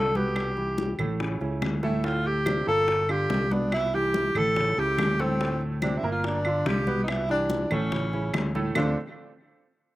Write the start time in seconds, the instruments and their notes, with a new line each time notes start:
Already playing: fingered electric bass C2, tenor saxophone A4
0.15 grand piano B2 B3 B4, tenor saxophone G4, high conga
0.36 high bongo, high conga, claves
0.57 grand piano E3 E4 G4, high bongo, high conga
0.78 high bongo, high conga
0.99 fingered electric bass A1, grand piano A2 A3 A4, high conga, low conga, claves
1.20 grand piano C#3 C#4 E4, high bongo, high conga
1.41 fingered electric bass C#2, grand piano C#3 C#4 E4, high bongo, high conga
1.62 fingered electric bass D2, high bongo, low bongo, high conga, claves
1.83 grand piano A2 A3 A4, tenor saxophone E4, high bongo, high conga
2.04 grand piano A2 A3 A4, tenor saxophone F4, high bongo, high conga
2.25 tenor saxophone G4, high conga
2.46 grand piano C3 C4 D4, high bongo, high conga, claves
2.67 fingered electric bass G1, grand piano A#2 A#3 A4, tenor saxophone A4, high conga
2.88 high bongo, high conga
3.09 grand piano D3 D4 F4, tenor saxophone G4, high conga, claves
3.30 fingered electric bass C2, high bongo, low bongo, high conga
3.51 grand piano B2 B3 B4, tenor saxophone D4, high conga
3.72 tenor saxophone E4, high bongo, high conga, claves
3.93 grand piano E3 E4 G4, tenor saxophone G4, high bongo, high conga
4.14 high bongo, high conga
4.35 fingered electric bass A1, grand piano A2 A3 A4, tenor saxophone A4, high conga, low conga, claves
4.56 grand piano C#3 C#4 E4, high bongo, high conga, low conga
4.77 fingered electric bass C#2, grand piano C#3 C#4 E4, tenor saxophone G4, high bongo, high conga
4.98 fingered electric bass D2, high bongo, low bongo, high conga, claves
5.19 grand piano A2 A3 A4, tenor saxophone C4, high bongo, high conga
5.40 grand piano A2 A3 A4, high bongo, high conga
5.61 high conga
5.82 grand piano C3 C4 D4, tenor saxophone D4, high bongo, high conga, claves
5.98 tenor saxophone E4
6.03 fingered electric bass G1, grand piano A#2 A#3 A#4, high conga
6.12 tenor saxophone F4
6.24 tenor saxophone D4, high bongo, high conga
6.45 grand piano D3 D4 F4, high conga, claves
6.66 fingered electric bass C2, tenor saxophone G4, high bongo, low bongo, high conga
6.87 grand piano B2 B3 B4, high conga
7.04 tenor saxophone D#4
7.08 tenor saxophone E4, high bongo, high conga, claves
7.29 grand piano E3 E4 G4, tenor saxophone D4, high bongo, high conga
7.50 high bongo, high conga
7.71 fingered electric bass A1, grand piano A2 A3 A4, tenor saxophone C#4, high conga, low conga, claves
7.92 grand piano C#3 C#4 E4, high bongo, high conga, low conga
8.13 grand piano C#3 C#4 E4, high bongo, high conga
8.34 fingered electric bass D2, high bongo, low bongo, high conga, claves
8.55 grand piano A2 A3 A4, high bongo, high conga
8.75 fingered electric bass D2, grand piano D3 A3 C4 D4 F4 A4, tenor saxophone D4, low bongo, low conga, claves